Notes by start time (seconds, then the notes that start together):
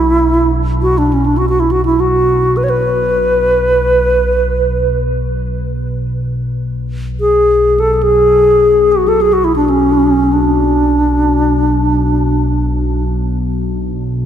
Already playing: B1 E4
0.82 F#4
0.98 D4
1.13 C#4
1.26 D4
1.38 F#4
1.49 F#4
1.60 E4
1.71 F#4
1.85 E4
2.00 F#4
2.57 B4
2.64 C#5
2.70 B4
6.58 B1
7.20 G#4
7.80 A4
7.93 A4
8.03 G#4
8.92 F#4
9.07 F#4 A4
9.21 G#4
9.33 F#4
9.44 E4
9.56 D4
9.70 C#4
10.33 D4